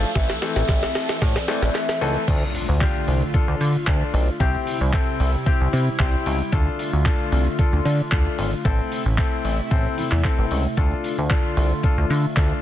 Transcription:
Already playing: analog synth pad F3 D4 A4, soft synth lead F5, riser
0.03 shaker
0.15 analog synth bass A1, grand piano E3 A3 C4 A4, analog synth pad E3 C4, soft synth lead E5, kick, snare, closed hi-hat, shaker
0.30 snare, shaker
0.42 grand piano E3 A3 C4 A4, soft synth lead E5, snare, open hi-hat, shaker
0.56 analog synth bass A1, snare, shaker
0.69 analog synth bass A1, soft synth lead E5, kick, snare, clap, closed hi-hat, shaker
0.83 snare, shaker
0.95 snare, open hi-hat, shaker
1.09 snare, shaker
1.22 analog synth bass A2, soft synth lead D5, kick, snare, closed hi-hat, shaker
1.36 snare, shaker
1.48 grand piano E3 A3 C4 A4, soft synth lead D5, snare, open hi-hat, shaker
1.62 analog synth bass A1, snare, shaker
1.75 soft synth lead E5, snare, clap, closed hi-hat, shaker
1.89 snare, shaker
2.01 analog synth bass C#2, grand piano E3 A3 C4 A4, soft synth lead A5, open hi-hat, shaker
2.16 shaker
2.28 analog synth bass D2, analog synth pad D3 A3 F4, grand piano D4 F4 A4, kick, closed hi-hat, crash, impact, shaker
2.42 shaker
2.55 open hi-hat, shaker
2.69 analog synth bass D2, shaker
2.81 grand piano D4 F4 G4, kick, clap, closed hi-hat, shaker
2.95 shaker
3.08 analog synth bass C2, open hi-hat, shaker
3.22 shaker
3.34 grand piano D4 F4 A4, kick, closed hi-hat, shaker
3.48 analog synth bass D2, shaker
3.61 analog synth bass D3, open hi-hat, shaker
3.75 shaker
3.87 analog synth bass D2, grand piano D4 F4 A4, kick, clap, closed hi-hat, shaker
4.01 shaker
4.14 analog synth bass B1, open hi-hat, shaker
4.28 shaker
4.40 analog synth bass C2, analog synth pad C3 G3 E4, grand piano C4 E4 G4, kick, closed hi-hat, shaker
4.54 shaker
4.67 open hi-hat, shaker
4.81 analog synth bass C2, shaker
4.93 grand piano C4 E4 A4, kick, clap, closed hi-hat, shaker
5.08 shaker
5.20 analog synth bass C2, open hi-hat, shaker
5.34 shaker
5.46 grand piano C4 E4 G4, kick, closed hi-hat, shaker
5.60 analog synth bass C2, shaker
5.73 analog synth bass C3, open hi-hat, shaker
5.87 shaker
5.99 analog synth bass C2, grand piano C4 E4 G4 C6, kick, clap, closed hi-hat, shaker
6.14 shaker
6.26 analog synth bass C#2, grand piano G5, open hi-hat, shaker
6.40 shaker
6.52 analog synth bass D2, analog synth pad D3 A3 F4, grand piano D4 F4 A4, kick, closed hi-hat, shaker
6.67 shaker
6.79 open hi-hat, shaker
6.93 analog synth bass D2, shaker
7.06 grand piano D4 F4 A4, kick, clap, closed hi-hat, shaker
7.20 shaker
7.32 analog synth bass C2, open hi-hat, shaker
7.46 shaker
7.59 grand piano D4 F4 A4, kick, closed hi-hat, shaker
7.73 analog synth bass D2, shaker
7.85 analog synth bass D3, open hi-hat, shaker
8.00 shaker
8.12 analog synth bass D2, grand piano D4 F4 A4, kick, clap, closed hi-hat, shaker
8.26 shaker
8.38 analog synth bass G#1, open hi-hat, shaker
8.53 shaker
8.65 analog synth bass A1, analog synth pad C3 A3 E4, grand piano C4 E4 A4, kick, closed hi-hat, shaker
8.79 shaker
8.92 open hi-hat, shaker
9.06 analog synth bass A1, shaker
9.18 grand piano C4 E4 A4, kick, clap, closed hi-hat, shaker
9.32 shaker
9.45 analog synth bass A1, open hi-hat, shaker
9.59 shaker
9.71 analog synth bass A1, grand piano C4 E4 A4, kick, closed hi-hat, shaker
9.85 shaker
9.98 analog synth bass E2, open hi-hat, shaker
10.12 analog synth bass E2, clap, shaker
10.24 grand piano C4 E4 A4, kick, clap, closed hi-hat, shaker
10.38 analog synth bass A1, shaker
10.51 analog synth bass C#2, open hi-hat, shaker
10.65 shaker
10.77 analog synth bass D2, analog synth pad D3 A3 F4, grand piano D4 F4 A4, kick, closed hi-hat, shaker
10.92 shaker
11.04 open hi-hat, shaker
11.18 analog synth bass D2, shaker
11.30 grand piano D4 F4 A4, kick, clap, closed hi-hat, shaker
11.45 shaker
11.57 analog synth bass C2, open hi-hat, shaker
11.71 shaker
11.83 grand piano D4 F4 A4, kick, closed hi-hat, shaker
11.98 analog synth bass D2, shaker
12.10 analog synth bass D3, open hi-hat, shaker
12.24 shaker
12.37 analog synth bass D2, grand piano D4 F4 A4, kick, clap, closed hi-hat, shaker
12.51 shaker

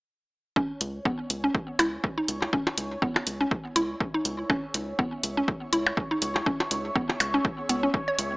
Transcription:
0.56 analog synth pad C#4, synth arpeggio sound C#4, synth texture C#5, kick
0.63 analog synth pad G#4
0.81 analog synth bass C#2, analog synth pad E5 G#5, closed hi-hat
1.05 synth arpeggio sound B3, kick
1.30 analog synth bass C#2, closed hi-hat
1.44 synth arpeggio sound C#4
1.55 kick
1.79 analog synth bass C#2, synth arpeggio sound E4, closed hi-hat, percussion blips
2.04 kick
2.18 synth arpeggio sound D#4
2.28 analog synth bass C#2, closed hi-hat
2.42 percussion blips
2.53 synth arpeggio sound C#4, kick
2.67 percussion blips
2.78 analog synth bass C#2, closed hi-hat
3.02 synth arpeggio sound B3, kick
3.16 percussion blips
3.27 analog synth bass C#2, closed hi-hat
3.41 synth arpeggio sound C#4
3.51 kick
3.76 analog synth bass C#2, synth arpeggio sound E4, closed hi-hat
4.00 kick
4.14 synth arpeggio sound D#4
4.25 analog synth bass C#2, closed hi-hat
4.50 synth arpeggio sound C#4, kick, percussion blips
4.74 analog synth bass C#2, analog synth pad C#6, closed hi-hat
4.99 synth arpeggio sound B3, kick
5.23 analog synth bass C#2, closed hi-hat
5.37 synth arpeggio sound C#4
5.48 kick
5.73 analog synth bass C#2, synth arpeggio sound E4, closed hi-hat
5.87 percussion blips
5.97 kick
6.11 synth arpeggio sound D#4
6.22 analog synth bass C#2, closed hi-hat
6.36 percussion blips
6.46 synth arpeggio sound C#4, kick
6.60 percussion blips
6.71 analog synth bass C#2, closed hi-hat
6.96 synth arpeggio sound B3, kick
7.10 percussion blips
7.20 analog synth bass C#2, closed hi-hat, percussion blips
7.34 synth arpeggio sound C#4
7.45 kick
7.69 analog synth bass C#2, synth arpeggio sound B3, closed hi-hat
7.83 synth arpeggio sound C#4
7.94 kick
8.08 synth arpeggio sound C#5
8.19 analog synth bass C#2, closed hi-hat

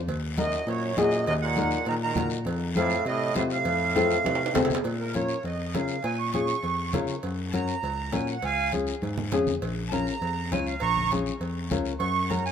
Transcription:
0.08 tine electric piano D#2, cowbell, high conga, long guiro
0.37 trombone F#2, nylon-string guitar D#4 F#4 A#4, accordion D#5, cowbell, high conga, short guiro
0.52 short guiro
0.67 trombone F#2, tine electric piano A#2, accordion C#5, cowbell, high conga, long guiro
0.97 trombone F#2, tine electric piano A#2, nylon-string guitar D#4 F#4 G#4, accordion D#5, cowbell, high conga, low timbale, short guiro
1.11 short guiro
1.26 tine electric piano D#2, trombone F#2, accordion D#5, cowbell, high conga, long guiro
1.42 trombone A#2, accordion F#5
1.56 nylon-string guitar D#4 F#4 A#4, cowbell, high conga, short guiro
1.71 short guiro
1.85 tine electric piano A#2, trombone D#3, accordion A#5, cowbell, high conga, long guiro
2.03 trombone D#3, accordion A#5
2.15 tine electric piano A#2, nylon-string guitar D#4 F#4 A#4, cowbell, high conga, low conga, short guiro
2.30 short guiro
2.45 tine electric piano F2, cowbell, high conga, long guiro
2.75 trombone A2, nylon-string guitar C4 F4 A4, accordion F5, cowbell, high conga, short guiro
2.90 short guiro
3.05 trombone A2, tine electric piano C3, accordion D#5, cowbell, high conga, long guiro
3.34 trombone A2, tine electric piano C3, nylon-string guitar C4 F4 C5, accordion F5, cowbell, high conga, short guiro
3.50 trombone A2, accordion F5, short guiro
3.65 tine electric piano F2, cowbell, high conga, long guiro
3.95 nylon-string guitar C4 F4 A4, cowbell, high conga, short guiro
4.10 short guiro
4.24 tine electric piano C3, cowbell, high conga, high timbale, long guiro
4.35 high timbale
4.46 high timbale
4.54 tine electric piano C3, nylon-string guitar C4 F4 A4, cowbell, low conga, low timbale, short guiro
4.65 low timbale
4.70 low conga, short guiro
4.75 low timbale
4.84 tine electric piano A#2, cowbell, high conga, long guiro
5.00 accordion A#4
5.14 nylon-string guitar C#4 F4 A#4, accordion C#5, cowbell, high conga, short guiro
5.28 short guiro
5.43 tine electric piano F2, accordion D#5, cowbell, high conga, long guiro
5.73 tine electric piano C#3, nylon-string guitar C#4 F4 A#4, accordion F5, cowbell, high conga, low timbale, short guiro
5.88 short guiro
6.03 tine electric piano A#2, accordion G#5, cowbell, high conga, long guiro
6.19 accordion C#6
6.32 nylon-string guitar C#4 F4 G#4, accordion C#6, cowbell, high conga, short guiro
6.47 short guiro
6.63 tine electric piano F2, cowbell, high conga, long guiro
6.92 tine electric piano C#3, nylon-string guitar C#4 F4 A#4, cowbell, high conga, low conga, low timbale, short guiro
7.07 short guiro
7.23 tine electric piano F#2, cowbell, high conga, long guiro
7.51 nylon-string guitar C#4 F#4 A#4, accordion A5, cowbell, high conga, short guiro
7.55 accordion A#5
7.68 short guiro
7.83 tine electric piano C#2, cowbell, high conga, long guiro
8.12 tine electric piano A#2, nylon-string guitar C#4 F#4 A#4, accordion G#5, cowbell, high conga, low timbale, short guiro
8.27 accordion F#5, short guiro
8.42 tine electric piano C#2, accordion F5 G#5, cowbell, high conga, long guiro
8.72 nylon-string guitar C#4 F4 G#4, cowbell, high conga, short guiro
8.87 short guiro
9.02 tine electric piano G#2, cowbell, high conga, long guiro
9.18 low conga
9.31 tine electric piano F2, nylon-string guitar C#4 F4 G#4, cowbell, low conga, low timbale, short guiro
9.47 low conga, short guiro
9.62 tine electric piano A#1, cowbell, high conga, long guiro
9.89 nylon-string guitar C#4 F4 A#4, accordion A5, cowbell, high conga, short guiro
9.93 accordion A#5
10.07 short guiro
10.22 tine electric piano F2, cowbell, high conga, long guiro
10.51 tine electric piano C#2, nylon-string guitar C#4 F4 C#5, accordion G#5, cowbell, high conga, low timbale, short guiro
10.67 accordion F5, short guiro
10.80 tine electric piano A#1, accordion A#5 C#6, cowbell, high conga, long guiro
10.97 low conga
11.11 nylon-string guitar C#4 F4 G#4, cowbell, high conga, short guiro
11.26 short guiro
11.40 tine electric piano F2, cowbell, high conga, long guiro
11.70 tine electric piano C#2, nylon-string guitar C#4 F4 A#4, cowbell, high conga, low conga, short guiro
11.85 short guiro
11.99 tine electric piano F#2, accordion C#6, cowbell, high conga, long guiro
12.29 nylon-string guitar C#4 F#4 A#4, accordion A#5, cowbell, high conga, short guiro
12.46 accordion G#5, short guiro

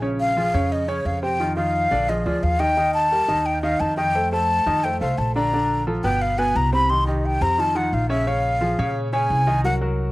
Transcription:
Already playing: upright bass A#1
0.02 grand piano C#3 C#4 C#5
0.20 flute F5
0.36 grand piano F3 F4 G#4
0.54 upright bass F2, grand piano C#3 C#4 C#5
0.72 flute D#5
0.88 grand piano C#3 C#4 C#5, flute C#5
1.05 upright bass F2, flute F5
1.22 grand piano C3 C4 C5, flute G5
1.40 grand piano D#3 D#4 F4
1.56 grand piano D#3 D#4 F4, flute F5
1.91 upright bass A#1, grand piano D3 D4 D5
2.09 grand piano F3 F4 G#4, flute D#5
2.26 upright bass D2, grand piano F3 F4 G#4, flute D5
2.43 upright bass D#2, flute F5
2.60 grand piano D#3 D#4 D#5, flute G5
2.77 grand piano D#3 D#4 D#5
2.94 flute A5
3.11 grand piano G3 G4 A#4
3.28 upright bass D#2, grand piano D#3 D#4 D#5
3.46 flute G5
3.62 grand piano D#3 D#4 D#5, flute F5
3.80 upright bass F2, flute A5
3.97 grand piano D#3 D#4 D#5, flute G5
4.15 grand piano A3 A4 C5
4.32 grand piano A3 A4 C5, flute A5
4.66 upright bass F2, grand piano D#3 D#4 D#5
4.84 grand piano A3 A4 C5, flute G5
5.01 upright bass C2, grand piano A3 A4 C5, flute F5
5.18 upright bass A#1, flute A5
5.35 grand piano D3 D4 D5, flute A#5
5.53 grand piano D3 D4 D5
5.87 grand piano F3 F4 A4
6.04 upright bass G1, grand piano B2 B3 B4, flute G5
6.22 flute F5
6.38 grand piano B2 B3 B4, flute G#5
6.55 upright bass C2, flute A#5
6.72 grand piano C3 C4 C5, flute B5
6.90 grand piano D#3 D#4 G4, flute C6
7.07 grand piano D#3 D#4 G4, flute D#5
7.26 flute G5
7.41 upright bass F2, grand piano C3 C4 C5, flute A#5
7.58 grand piano D#3 D#4 F4, flute A5
7.75 grand piano D#3 D#4 F4, flute F#5
7.93 upright bass A#1, flute F5
8.09 grand piano C#3 C#4 C#5, flute E5
8.27 grand piano C#3 C#4 C#5, flute F5
8.61 grand piano F3 F4 G#4
8.79 upright bass A#2, grand piano C#3 C#4 C#5
9.13 grand piano C#3 C#4 C#5, flute G#5
9.30 upright bass C2
9.47 grand piano D#3 D#4 D#5
9.64 grand piano F#3 F#4 A#4, flute F#5
9.81 grand piano F#3 F#4 A#4

